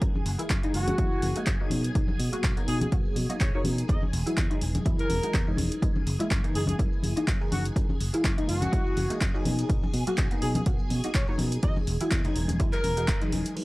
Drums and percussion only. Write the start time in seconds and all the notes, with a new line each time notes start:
0.02 kick, closed hi-hat, maracas
0.15 high conga, maracas
0.26 open hi-hat
0.39 closed hi-hat, maracas
0.50 kick, clap, closed hi-hat, high conga, maracas
0.63 closed hi-hat, maracas
0.74 open hi-hat
0.87 closed hi-hat, high conga, maracas
0.98 kick, closed hi-hat, maracas
1.12 maracas
1.22 open hi-hat, high conga
1.35 closed hi-hat, maracas
1.46 kick, clap, closed hi-hat
1.60 maracas
1.70 open hi-hat, high conga
1.84 closed hi-hat, maracas
1.95 kick, closed hi-hat, maracas
2.08 high conga, maracas
2.20 open hi-hat
2.33 closed hi-hat, maracas
2.43 kick, clap, closed hi-hat, high conga, maracas
2.57 closed hi-hat, maracas
2.68 open hi-hat
2.81 closed hi-hat, high conga, maracas
2.92 kick, closed hi-hat, maracas
3.05 maracas
3.16 open hi-hat, high conga
3.29 closed hi-hat, maracas
3.39 kick, clap, closed hi-hat, maracas
3.54 maracas
3.64 open hi-hat, high conga
3.78 closed hi-hat, maracas
3.88 kick, closed hi-hat, maracas
4.01 high conga, maracas
4.13 open hi-hat
4.26 closed hi-hat, maracas
4.37 kick, clap, closed hi-hat, high conga, maracas
4.51 closed hi-hat, maracas
4.61 open hi-hat
4.75 closed hi-hat, high conga, maracas
4.85 kick, closed hi-hat, maracas
4.98 closed hi-hat, maracas
5.10 open hi-hat, high conga
5.22 closed hi-hat, maracas
5.34 kick, clap, closed hi-hat, maracas
5.47 maracas
5.57 open hi-hat, high conga
5.71 closed hi-hat, maracas
5.82 kick, closed hi-hat, maracas
5.95 high conga, maracas
6.07 open hi-hat
6.20 closed hi-hat, maracas
6.31 kick, clap, closed hi-hat, high conga, maracas
6.44 closed hi-hat, maracas
6.55 open hi-hat
6.67 closed hi-hat, high conga, maracas
6.79 kick, closed hi-hat, maracas
6.93 maracas
7.03 open hi-hat, high conga
7.16 closed hi-hat, maracas
7.27 kick, clap, closed hi-hat, maracas
7.41 maracas
7.52 open hi-hat, high conga
7.65 closed hi-hat, maracas
7.76 kick, closed hi-hat, maracas
7.89 high conga, maracas
8.01 open hi-hat
8.14 closed hi-hat, maracas
8.24 kick, clap, closed hi-hat, high conga, maracas
8.38 closed hi-hat, maracas
8.49 open hi-hat
8.62 closed hi-hat, high conga, maracas
8.73 kick, closed hi-hat, maracas
8.86 maracas
8.97 open hi-hat, high conga
9.10 closed hi-hat, maracas
9.21 kick, clap, closed hi-hat, maracas
9.35 maracas
9.45 open hi-hat, high conga
9.58 closed hi-hat, maracas
9.70 kick, closed hi-hat, maracas
9.83 high conga, maracas
9.94 open hi-hat
10.07 closed hi-hat, maracas
10.18 kick, clap, closed hi-hat, high conga, maracas
10.31 closed hi-hat, maracas
10.42 open hi-hat
10.55 closed hi-hat, high conga, maracas
10.66 kick, closed hi-hat, maracas
10.79 maracas
10.90 open hi-hat, high conga
11.03 closed hi-hat, maracas
11.14 kick, clap, closed hi-hat, maracas
11.27 maracas
11.38 open hi-hat, high conga
11.52 closed hi-hat, maracas
11.63 kick, closed hi-hat, maracas
11.76 high conga, maracas
11.87 open hi-hat
12.01 closed hi-hat, maracas
12.11 kick, clap, closed hi-hat, high conga, maracas
12.24 closed hi-hat, low conga, maracas
12.36 open hi-hat
12.48 closed hi-hat, high conga, maracas
12.60 kick, closed hi-hat, maracas
12.72 clap, closed hi-hat, maracas
12.84 open hi-hat, high conga
12.97 closed hi-hat, maracas
13.08 kick, clap, closed hi-hat, maracas
13.21 closed hi-hat, maracas
13.32 open hi-hat, high conga
13.45 closed hi-hat, maracas
13.56 crash, maracas